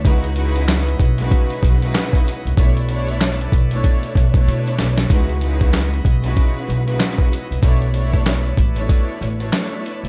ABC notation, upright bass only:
X:1
M:4/4
L:1/16
Q:"Swing 16ths" 1/4=95
K:C#phr
V:1 name="Upright bass" clef=bass
C,,6 B,,,2 z2 B,,,2 z3 ^B,,, | B,,,6 B,,,2 z2 B,,,2 B,,2 B,,,2 | C,,6 B,,,2 z2 B,,,2 z3 ^B,,, | B,,,6 A,,,2 z2 A,,,2 z3 D,, |]